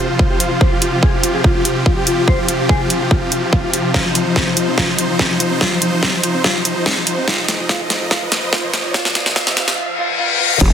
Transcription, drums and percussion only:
0.19 kick
0.40 closed hi-hat
0.61 kick
0.82 closed hi-hat
1.03 kick
1.23 closed hi-hat
1.44 kick
1.65 closed hi-hat
1.86 kick
2.07 closed hi-hat
2.28 kick
2.48 closed hi-hat
2.69 kick
2.90 closed hi-hat
3.11 kick
3.32 closed hi-hat
3.53 kick
3.74 closed hi-hat
3.94 kick, snare
4.15 closed hi-hat
4.36 kick, snare
4.57 closed hi-hat
4.78 kick, snare
4.99 closed hi-hat
5.19 kick, snare
5.40 closed hi-hat
5.61 kick, snare
5.82 closed hi-hat
6.03 kick, snare
6.24 closed hi-hat
6.44 kick, snare
6.65 closed hi-hat
6.86 kick, snare
7.07 closed hi-hat
7.28 kick, snare
7.48 snare, closed hi-hat
7.69 kick, snare
7.90 snare, closed hi-hat
8.11 kick, snare
8.32 snare, closed hi-hat
8.53 kick, snare
8.74 snare, closed hi-hat
8.94 kick, snare
9.05 snare
9.15 snare, closed hi-hat
9.26 snare
9.36 kick, snare
9.47 snare
9.57 snare, closed hi-hat
9.68 snare
10.61 kick, crash

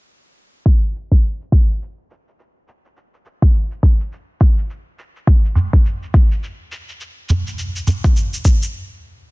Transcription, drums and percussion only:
0.66 kick, cabasa
0.83 cabasa
0.95 cabasa
1.12 kick, cabasa
1.24 cabasa
1.41 cabasa
1.52 kick, cabasa
1.70 cabasa
1.82 cabasa
2.11 cabasa
2.28 cabasa
2.40 cabasa
2.68 cabasa
2.85 cabasa
2.97 cabasa
3.14 cabasa
3.26 cabasa
3.42 kick, cabasa
3.54 cabasa
3.71 cabasa
3.83 kick, cabasa
4.00 cabasa
4.12 cabasa
4.41 kick, cabasa
4.58 cabasa
4.70 cabasa
4.99 cabasa
5.16 cabasa
5.27 kick, cabasa
5.45 cabasa
5.55 udu, cabasa
5.73 kick, cabasa
5.86 cabasa
6.03 cabasa
6.14 kick, cabasa
6.31 cabasa
6.43 cabasa
6.72 cabasa
6.89 cabasa
7.01 cabasa
7.29 udu, cabasa
7.47 cabasa
7.58 cabasa
7.76 cabasa
7.87 udu, cabasa
8.04 kick, cabasa
8.16 cabasa
8.33 cabasa
8.45 kick, cabasa
8.62 cabasa

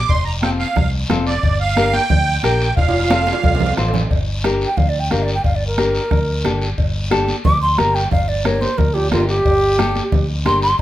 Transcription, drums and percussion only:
0.09 bombo low, cowbell, long guiro
0.42 bombo rim, cowbell, high conga, short guiro
0.60 short guiro
0.76 bombo low, bombo rim, cowbell, low conga, long guiro
1.10 bombo rim, cowbell, high conga, low conga, low timbale, short guiro
1.27 short guiro
1.43 bombo low, cowbell, long guiro
1.77 bombo rim, cowbell, high conga, short guiro
1.94 high conga, short guiro
2.10 bombo low, cowbell, low conga, long guiro
2.43 bombo rim, cowbell, high conga, short guiro
2.61 short guiro
2.77 bombo low, cowbell, high timbale, long guiro
2.89 high timbale
2.99 high timbale
3.10 bombo rim, cowbell, high conga, low timbale, short guiro
3.22 low timbale
3.27 high conga, short guiro
3.33 high timbale
3.43 bombo low, cowbell, low conga, low timbale, long guiro
3.55 low timbale
3.60 low conga
3.66 low timbale
3.77 bombo rim, cowbell, low timbale, short guiro
3.88 low timbale
3.94 low conga, short guiro
3.99 low timbale
4.11 bombo low, cowbell, long guiro
4.44 bombo rim, cowbell, high conga, short guiro
4.61 short guiro
4.77 bombo low, cowbell, low conga, long guiro
5.11 bombo rim, cowbell, high conga, short guiro
5.28 short guiro
5.44 bombo low, cowbell, long guiro
5.78 bombo rim, cowbell, high conga, short guiro
5.95 short guiro
6.11 bombo low, bombo rim, cowbell, low conga, long guiro
6.45 bombo rim, cowbell, high conga, short guiro
6.62 short guiro
6.78 bombo low, cowbell, long guiro
7.11 bombo rim, cowbell, high conga, short guiro
7.28 high conga, short guiro
7.45 bombo low, cowbell, low conga, long guiro
7.78 bombo rim, cowbell, high conga, short guiro
7.96 short guiro
8.11 bombo low, cowbell, low conga, long guiro
8.45 bombo rim, cowbell, high conga, short guiro
8.62 high conga, short guiro
8.78 bombo low, cowbell, low conga, long guiro
8.95 high timbale
9.12 bombo rim, cowbell, high conga, low conga, low timbale, short guiro
9.29 low timbale, short guiro
9.45 bombo low, cowbell, long guiro
9.79 bombo rim, cowbell, high conga, short guiro
9.95 high conga, short guiro
10.12 bombo low, cowbell, low conga, long guiro
10.46 bombo rim, cowbell, high conga, short guiro
10.62 short guiro

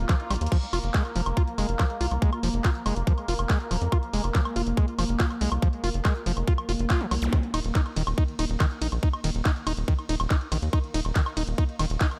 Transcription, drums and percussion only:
0.09 kick, clap, closed hi-hat, high woodblock
0.20 closed hi-hat
0.31 closed hi-hat, open hi-hat, high woodblock
0.36 closed hi-hat
0.41 closed hi-hat
0.46 closed hi-hat
0.52 kick, closed hi-hat, crash, high woodblock
0.62 closed hi-hat
0.73 open hi-hat, high woodblock
0.84 closed hi-hat
0.94 kick, clap, closed hi-hat
1.05 closed hi-hat, high woodblock
1.16 open hi-hat
1.26 closed hi-hat, high woodblock
1.37 kick, closed hi-hat
1.48 closed hi-hat
1.58 open hi-hat, high woodblock
1.69 closed hi-hat
1.79 kick, clap, closed hi-hat, high woodblock
1.90 closed hi-hat
2.01 open hi-hat
2.11 closed hi-hat, high woodblock
2.22 kick, closed hi-hat
2.33 closed hi-hat, high woodblock
2.43 open hi-hat
2.54 closed hi-hat
2.65 kick, clap, closed hi-hat, high woodblock
2.75 closed hi-hat
2.86 open hi-hat, high woodblock
2.96 closed hi-hat
3.07 kick, closed hi-hat
3.18 closed hi-hat, high woodblock
3.28 open hi-hat
3.39 closed hi-hat, high woodblock
3.50 kick, clap, closed hi-hat
3.60 closed hi-hat
3.71 open hi-hat, high woodblock
3.82 closed hi-hat
3.92 kick, closed hi-hat, high woodblock
4.03 closed hi-hat
4.13 open hi-hat
4.24 closed hi-hat, high woodblock
4.35 kick, clap, closed hi-hat
4.45 closed hi-hat, high woodblock
4.56 open hi-hat
4.67 closed hi-hat
4.77 kick, closed hi-hat, high woodblock
4.88 closed hi-hat
4.99 open hi-hat, high woodblock
5.09 closed hi-hat
5.20 kick, clap, closed hi-hat
5.30 closed hi-hat, high woodblock
5.41 open hi-hat
5.52 closed hi-hat, high woodblock
5.62 kick, closed hi-hat
5.73 closed hi-hat
5.84 open hi-hat, high woodblock
5.94 closed hi-hat
6.05 kick, clap, closed hi-hat, high woodblock
6.16 closed hi-hat
6.26 open hi-hat
6.37 closed hi-hat, high woodblock
6.47 kick, closed hi-hat
6.58 closed hi-hat, high woodblock
6.69 open hi-hat
6.79 closed hi-hat
6.90 kick, clap, closed hi-hat, high woodblock
7.01 closed hi-hat
7.11 open hi-hat, high woodblock
7.22 closed hi-hat
7.33 kick, closed hi-hat, high woodblock
7.43 closed hi-hat
7.54 open hi-hat, ride, high woodblock
7.64 closed hi-hat
7.75 kick, clap, closed hi-hat
7.86 closed hi-hat, high woodblock
7.96 open hi-hat, ride
8.07 closed hi-hat, high woodblock
8.18 kick, closed hi-hat
8.28 closed hi-hat
8.39 open hi-hat, ride, high woodblock
8.50 closed hi-hat
8.60 kick, clap, closed hi-hat, high woodblock
8.71 closed hi-hat
8.82 open hi-hat, ride
8.92 closed hi-hat, high woodblock
9.03 kick, closed hi-hat
9.13 closed hi-hat, high woodblock
9.24 open hi-hat, ride
9.35 closed hi-hat
9.45 kick, clap, closed hi-hat, high woodblock
9.56 closed hi-hat
9.67 open hi-hat, ride, high woodblock
9.77 closed hi-hat
9.88 kick, closed hi-hat
9.99 closed hi-hat, high woodblock
10.09 open hi-hat, ride
10.20 closed hi-hat, high woodblock
10.30 kick, clap, closed hi-hat
10.41 closed hi-hat
10.52 open hi-hat, ride, high woodblock
10.62 closed hi-hat
10.73 kick, closed hi-hat, high woodblock
10.84 closed hi-hat
10.94 open hi-hat, ride
11.05 closed hi-hat, high woodblock
11.16 kick, clap, closed hi-hat
11.26 closed hi-hat, high woodblock
11.37 open hi-hat, ride
11.47 closed hi-hat
11.58 kick, closed hi-hat, high woodblock
11.69 closed hi-hat
11.79 open hi-hat, ride, high woodblock
11.90 closed hi-hat
12.01 kick, clap, closed hi-hat
12.11 closed hi-hat, high woodblock

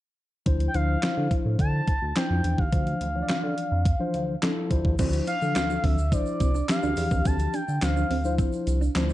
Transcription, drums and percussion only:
0.46 kick, closed hi-hat
0.60 closed hi-hat
0.74 closed hi-hat
1.03 snare, clap, closed hi-hat
1.31 kick, closed hi-hat
1.59 kick, closed hi-hat
1.87 kick, closed hi-hat
2.16 snare, clap, closed hi-hat
2.44 closed hi-hat
2.58 kick
2.72 kick, closed hi-hat
2.87 closed hi-hat
3.01 closed hi-hat
3.29 snare, clap, closed hi-hat
3.58 closed hi-hat
3.85 kick, closed hi-hat
4.14 closed hi-hat
4.42 snare, clap, closed hi-hat
4.71 kick, closed hi-hat
4.85 kick
4.99 kick, closed hi-hat, crash, shaker
5.12 closed hi-hat, shaker
5.27 closed hi-hat, shaker
5.42 shaker
5.56 snare, clap, closed hi-hat, shaker
5.70 shaker
5.84 kick, open hi-hat
5.98 shaker
6.12 kick, closed hi-hat, shaker
6.26 shaker
6.40 kick, closed hi-hat, shaker
6.55 shaker
6.69 snare, clap, closed hi-hat, shaker
6.83 shaker
6.97 open hi-hat, shaker
7.11 kick, shaker
7.25 kick, closed hi-hat, shaker
7.39 closed hi-hat, shaker
7.54 closed hi-hat, shaker
7.68 shaker
7.82 snare, clap, closed hi-hat, shaker
7.97 shaker
8.11 open hi-hat
8.25 shaker
8.38 kick, closed hi-hat, shaker
8.53 shaker
8.67 closed hi-hat, shaker
8.82 shaker
8.95 snare, clap, closed hi-hat, shaker
9.09 shaker

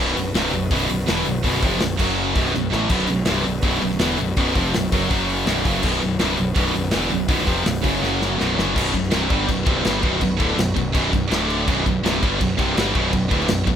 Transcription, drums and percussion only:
0.08 snare
0.17 open hi-hat
0.35 snare, open hi-hat
0.53 open hi-hat
0.71 kick, open hi-hat
0.89 open hi-hat
0.99 snare
1.08 snare, open hi-hat
1.25 open hi-hat
1.44 kick, open hi-hat
1.55 snare
1.63 kick, open hi-hat
1.80 snare, open hi-hat
1.99 kick, crash
2.36 kick, open hi-hat
2.46 snare
2.54 snare
2.72 snare
2.89 kick, crash
2.99 snare
3.07 open hi-hat
3.25 snare, open hi-hat
3.43 open hi-hat
3.61 kick, open hi-hat
3.81 open hi-hat
3.92 snare
3.99 snare, open hi-hat
4.18 open hi-hat
4.36 kick, open hi-hat
4.47 snare
4.55 kick, open hi-hat
4.74 snare, open hi-hat
4.92 kick, open hi-hat
5.11 kick, open hi-hat
5.29 open hi-hat
5.46 snare, open hi-hat
5.65 kick, open hi-hat
5.83 kick, crash
5.94 snare
6.01 open hi-hat
6.19 snare, open hi-hat
6.37 open hi-hat
6.55 kick, open hi-hat
6.74 open hi-hat
6.83 snare
6.91 snare, open hi-hat
7.11 open hi-hat
7.28 kick, open hi-hat
7.39 snare
7.47 kick, open hi-hat
7.66 snare, open hi-hat
7.84 kick, open hi-hat
8.03 snare
8.22 snare
8.40 snare
8.59 snare
8.76 kick, crash
8.94 kick, crash
9.04 snare
9.11 snare, crash
9.30 kick, crash
9.49 kick, crash
9.66 kick, crash
9.85 snare, crash
10.03 kick, crash
10.21 kick, crash
10.40 kick, crash
10.58 snare, crash
10.77 kick, crash
10.95 kick, crash
11.13 kick, snare, crash
11.31 snare, crash
11.50 crash
11.68 kick, crash
11.86 kick, crash
12.05 snare, crash
12.23 kick, crash
12.41 kick, crash
12.59 kick, snare, crash
12.77 snare, crash
12.95 kick, crash
13.13 kick, crash
13.31 kick, crash
13.40 snare
13.48 snare, crash
13.67 kick, crash

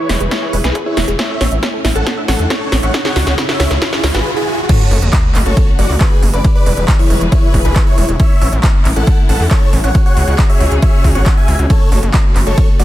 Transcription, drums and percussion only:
0.09 snare, open hi-hat
0.20 closed hi-hat
0.31 kick, snare, closed hi-hat
0.53 open hi-hat
0.64 snare, closed hi-hat
0.75 kick, closed hi-hat
0.97 snare, open hi-hat
1.08 closed hi-hat
1.19 kick, snare, closed hi-hat
1.41 snare, open hi-hat
1.52 closed hi-hat
1.63 kick, snare, closed hi-hat
1.85 snare, open hi-hat
1.96 closed hi-hat
2.07 kick, snare, closed hi-hat
2.28 snare, open hi-hat
2.39 closed hi-hat
2.50 kick, snare, closed hi-hat
2.72 snare, open hi-hat
2.83 closed hi-hat
2.94 kick, snare, closed hi-hat
3.05 snare
3.16 snare, open hi-hat
3.27 snare, closed hi-hat
3.38 kick, snare, closed hi-hat
3.49 snare
3.60 snare, open hi-hat
3.71 snare, closed hi-hat
3.82 kick, snare, closed hi-hat
3.93 snare
4.04 kick, snare, open hi-hat
4.15 snare, closed hi-hat
4.69 kick, closed hi-hat, ride, crash
4.91 open hi-hat
5.02 closed hi-hat
5.13 kick, clap, closed hi-hat, ride
5.35 clap, open hi-hat
5.46 closed hi-hat
5.57 kick, closed hi-hat, ride
5.79 open hi-hat
5.90 open hi-hat
6.01 kick, clap, closed hi-hat, ride
6.23 open hi-hat
6.34 closed hi-hat
6.44 kick, closed hi-hat, ride
6.66 open hi-hat
6.77 closed hi-hat
6.88 kick, clap, closed hi-hat, ride
6.99 open hi-hat
7.10 open hi-hat
7.21 closed hi-hat
7.32 kick, closed hi-hat, ride
7.54 kick, open hi-hat
7.65 closed hi-hat
7.76 kick, clap, closed hi-hat, ride
7.98 open hi-hat
8.09 closed hi-hat
8.20 kick, closed hi-hat, ride
8.42 open hi-hat
8.53 closed hi-hat
8.63 kick, clap, closed hi-hat, ride
8.85 clap, open hi-hat
8.96 closed hi-hat
9.07 kick, closed hi-hat, ride
9.29 open hi-hat
9.40 open hi-hat
9.51 kick, clap, closed hi-hat, ride
9.73 open hi-hat
9.84 closed hi-hat
9.95 kick, closed hi-hat, ride
10.17 open hi-hat
10.28 closed hi-hat
10.39 kick, clap, closed hi-hat, ride
10.50 open hi-hat
10.61 open hi-hat
10.72 closed hi-hat
10.82 kick, closed hi-hat, ride
11.04 kick, open hi-hat
11.15 closed hi-hat
11.26 kick, clap, closed hi-hat, ride
11.48 open hi-hat
11.59 closed hi-hat
11.70 kick, closed hi-hat, ride
11.92 open hi-hat
12.03 closed hi-hat
12.14 kick, clap, closed hi-hat, ride
12.36 clap, open hi-hat
12.47 closed hi-hat
12.58 kick, closed hi-hat, ride
12.80 open hi-hat

